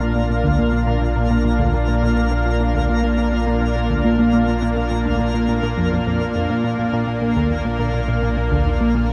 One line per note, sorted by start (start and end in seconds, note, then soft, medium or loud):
0.00 6.47 A#1 medium
0.00 9.13 A#2 medium
0.00 0.11 A#2 loud
0.00 9.13 A#3 medium
0.00 9.13 D4 medium
0.00 9.13 F4 medium
0.00 9.13 A#4 medium
0.00 9.13 F5 medium
0.15 0.22 A#2 medium
0.30 0.40 A#2 medium
0.44 0.58 D2 medium
0.59 0.69 A#2 medium
0.73 0.86 A#2 medium
0.87 0.98 A#2 loud
1.02 1.08 A#2 medium
1.16 1.27 A#2 medium
1.30 1.37 A#2 medium
1.45 1.55 A#2 medium
1.59 1.73 D2 loud
1.74 1.84 A#2 medium
1.88 2.01 A#2 medium
2.02 2.13 A#2 loud
2.17 2.23 A#2 medium
2.31 2.42 A#2 loud
2.46 2.52 A#2 medium
2.60 2.71 A#2 medium
2.75 2.88 D2 medium
2.89 3.00 A#2 medium
3.04 3.17 A#2 medium
3.18 3.29 A#2 medium
3.33 3.39 A#2 medium
3.47 3.58 A#2 loud
3.61 3.68 A#2 medium
3.76 3.86 A#2 medium
3.90 4.04 D2 loud
4.04 4.15 A#2 medium
4.19 4.32 A#2 medium
4.33 4.44 A#2 loud
4.48 4.54 A#2 medium
4.62 4.73 A#2 loud
4.77 4.83 A#2 medium
4.91 5.02 A#2 medium
5.06 5.19 D2 loud
5.20 5.30 A#2 medium
5.34 5.48 A#2 medium
5.49 5.59 A#2 loud
5.63 5.74 A#2 loud
5.78 5.88 F2 loud
5.92 5.98 F2 medium
6.07 6.20 F2 medium
6.21 6.31 A#2 medium
6.35 6.46 F2 medium
6.50 9.13 A#1 medium
6.50 6.63 A#2 medium
6.64 6.75 A#2 loud
6.79 6.85 A#2 medium
6.93 7.04 A#2 loud
7.07 7.14 A#2 medium
7.22 7.32 A#2 medium
7.36 7.50 D2 medium
7.51 7.61 D#2 medium
7.65 7.78 A#2 medium
7.79 7.90 A#2 loud
7.94 8.00 A#2 medium
8.08 8.19 A#2 medium
8.23 8.29 A#2 medium
8.37 8.48 A#2 medium
8.52 8.65 D2 loud
8.66 8.77 D#2 medium
8.81 8.94 A#2 medium
8.95 9.06 A#2 loud
9.09 9.13 A#2 medium